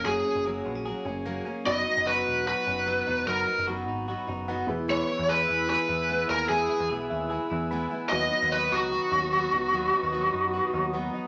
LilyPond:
<<
  \new Staff \with { instrumentName = "Analog synth pad" } { \time 4/4 \key b \major \tempo 4 = 149 << { r1 | r1 | r1 | <gis'' e'''>1~ |
<gis'' e'''>1 | <fis'' dis'''>1~ | <fis'' dis'''>1 | } \\ { r1 | r1 | r1 | b'1~ |
b'1~ | b'1~ | b'1 | } >> }
  \new Staff \with { instrumentName = "Lead electric guitar" } { \time 4/4 \key b \major gis'4 r2. | dis''4 b'4 b'2 | ais'4 r2. | cis''4 b'4 b'4. ais'8 |
gis'4 r2. | dis''4 b'8 fis'2~ fis'8~ | fis'2. r4 | }
  \new Staff \with { instrumentName = "Reed electric piano" } { \time 4/4 \key b \major << { r1 | r1 | r2. fis''8 b''8 | r1 |
r4. e''8 gis''4 b''4 | r1 | r1 | } \\ { <ais cis' fis' gis'>1 | <b dis' fis' dis''>1~ | <b dis' fis' dis''>2.~ <b dis' fis' dis''>8 <b e' gis' b'>8~ | <b e' gis' b'>1~ |
<b e' gis' b'>2.~ <b e' gis' b'>8 r8 | <b dis' fis' b'>1~ | <b dis' fis' b'>1 | } >> }
  \new Staff \with { instrumentName = "Clean electric guitar" } { \time 4/4 \key b \major <fis ais cis' gis'>8 cis'8 gis'8 b16 cis'16 gis'8 cis'8 ais8 cis'8 | fis8 dis'8 fis'8 dis'8 fis'8 cis'16 dis'16 b8 dis'8 | fis8 dis'8 fis'8 dis'8 fis'8 dis'8 b8 e8 | e8 e'8 gis'8 e'8 gis'8 e'8 b8 e'8~ |
e'8 e'8 gis'8 e'8 gis'8 e'8 b8 e'8 | fis8 dis'8 fis'8 dis'8 fis'8 cis'16 dis'16 b8 dis'8 | fis8 cis'16 dis'16 fis'8 dis'8 fis'8 dis'8 b8 dis'8 | }
  \new Staff \with { instrumentName = "Twelve-string acoustic guitar" } { \time 4/4 \key b \major <fis ais cis' gis'>8 <ais cis' gis'>8 <fis ais cis' gis'>4 <fis ais cis' gis'>8 <ais cis' gis'>8 <fis ais cis' gis'>8 <ais cis' gis'>8 | <fis b dis' fis'>8 <b dis' fis'>8 <fis b dis' fis'>4 <fis b dis' fis'>8 <b dis' fis'>8 <fis b dis' fis'>8 <b dis' fis'>8 | <fis b dis' fis'>8 <b dis' fis'>8 <fis b dis' fis'>4 <fis b dis' fis'>8 <b dis' fis'>8 <fis b dis' fis'>8 <gis b e'>8 | <e gis b e'>8 <gis b e'>8 <e gis b e'>4 <e gis b e'>8 <gis b e'>8 <e gis b e'>8 <gis b e'>8 |
<e gis b e'>8 <gis b e'>8 <e gis b e'>4 <e gis b e'>8 <gis b e'>8 <e gis b e'>8 <gis b e'>8 | <dis fis b dis'>8 <fis b dis'>8 <dis fis b dis'>4 <dis fis b dis'>8 <fis b dis'>8 <dis fis b dis'>8 <fis b dis'>8 | <dis fis b dis'>8 <fis b dis'>8 <dis fis b dis'>4 <dis fis b dis'>8 <fis b dis'>8 <dis fis b dis'>8 <fis b dis'>8 | }
  \new Staff \with { instrumentName = "Picked electric bass" } { \clef bass \time 4/4 \key b \major fis,,8 r16 fis,,8. ais,,8. r16 fis,,4 r8 | fis,,8 r16 fis,,8. e,,8. r16 fis,,4 e,,8 | fis,,8 r16 fis,,8. gis,,8. r16 fis,,4 e,,8~ | e,,8 r16 e,8. e,8. r16 e,4 dis,8 |
e,8 r16 e,16 b,,8 dis,8. r16 e,4 r8 | dis,8 r16 dis,8. cis,8. r16 dis,4 cis,8 | dis,8 r16 dis,8. fis,8. r16 dis,4 r8 | }
>>